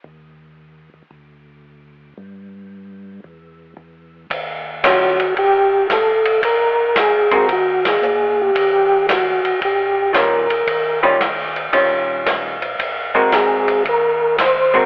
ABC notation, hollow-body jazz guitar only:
X:1
M:4/4
L:1/8
Q:"Swing" 1/4=113
K:Ebmix
V:1 name="Hollow-body jazz guitar"
z8 | z8 | z2 [E,G,DF] z4 z | z3 [A,C_GB] z4 |
z6 [E,G,DF] z | z [E,G,DF] z2 [E,G,DF]3 z | z [A,C_GB]3 z3 [A,CGB] |]